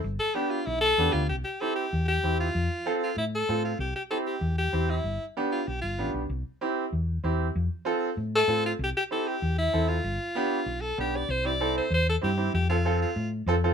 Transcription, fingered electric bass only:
\new Staff \with { instrumentName = "Fingered electric bass" } { \clef bass \time 4/4 \key c \major \tempo 4 = 192 g,,8 r4. b,,4 e,8 d,8 | c,8 r4. e,4 e,4 | f,8 r4. a,4 a,4 | c,8 r4. e,4 e,4 |
g,,8 r4. b,,8 g,,8 a,,8 b,,8 | c,8 r4. e,4 e,4 | f,8 r4. a,4 a,4 | c,8 r4. e,4 e,4 |
g,,8 r4. b,,4 b,,4 | c,2 e,4 g,4 | f,2 a,4 f,4 | }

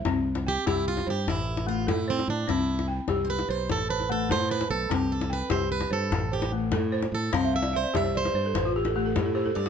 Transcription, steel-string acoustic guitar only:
\new Staff \with { instrumentName = "Steel-string acoustic guitar" } { \time 12/8 \key c \major \tempo 4. = 99 r4 g'8 e'8 f'8 g'8 e'4 f'8 e'8 c'8 d'8 | e'4 r8. r32 c''32 b'8 c''8 a'8 b'8 a'8 c''8 b'8 a'8 | g'8 a'8 b'8 c''8 b'8 a'4 g'8 r4. a'8 | c''8 e''8 c''8 e''8 c''4. r2 d''8 | }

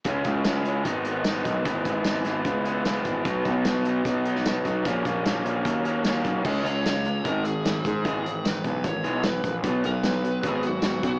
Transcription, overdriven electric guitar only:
\new Staff \with { instrumentName = "Overdriven electric guitar" } { \clef bass \time 4/4 \key e \lydian \tempo 4 = 150 <cis gis cis' e'>8 <gis cis' e'>8 <cis gis cis' e'>8 <gis cis' e'>8 <gis, dis gis b dis'>8 <gis b dis'>8 <dis gis b dis'>4 | <gis, e gis b e'>8 <gis b e'>8 <gis, e gis b e'>8 <gis b e'>4 <gis b e'>8 <e gis b e'>4 | <b, fis b dis'>8 <fis b dis'>8 <b, fis b dis'>8 <fis b dis'>4 <fis b dis'>8 <b, fis b dis'>4 | <ais, fis ais cis'>8 <fis ais cis'>8 <ais, fis ais cis'>8 <fis ais cis'>4 <fis ais cis'>8 <ais, fis ais cis'>4 |
<cis gis cis'>8 <cis gis>8 <cis gis>8 <cis gis>8 <gis, dis gis>8 <gis, dis>8 <gis, dis>8 <gis, dis>8 | <gis, e gis>8 <gis, e>8 <gis, e>8 <gis, e>8 <gis, e>8 <gis, e gis>8 <gis, e>8 <gis, e>8 | <b, fis b>8 <b, fis>8 <b, fis>8 <b, fis>8 <b, fis b>8 <b, fis>8 <b, fis>8 <b, fis>8 | }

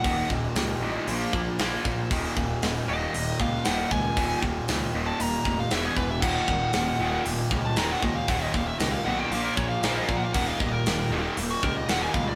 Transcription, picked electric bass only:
\new Staff \with { instrumentName = "Picked electric bass" } { \clef bass \time 4/4 \key ees \minor \tempo 4 = 117 ees,,8 ees,,8 des,8 a,,8 bes,,8 bes,,8 bes,,8 bes,8 | ees,,8 ees,,8 ees,,8 ees,,8 ees,,8 des,8 ees,,8 des,8 | ees,,8 ees,,8 des,8 ees,,8 ees,,8 f,,8 e,,8 e,,8 | ees,,8 ees,,8 ees,,8 ees,,8 ees,,8 des,8 ees,,8 des,8 |
ees,,8 ees,,8 des,8 ces,8 bes,,8 bes,,8 bes,,8 bes,8 | ees,,8 ees,,8 ees,,8 ees,,8 ees,,8 des,8 ees,,8 des,8 | }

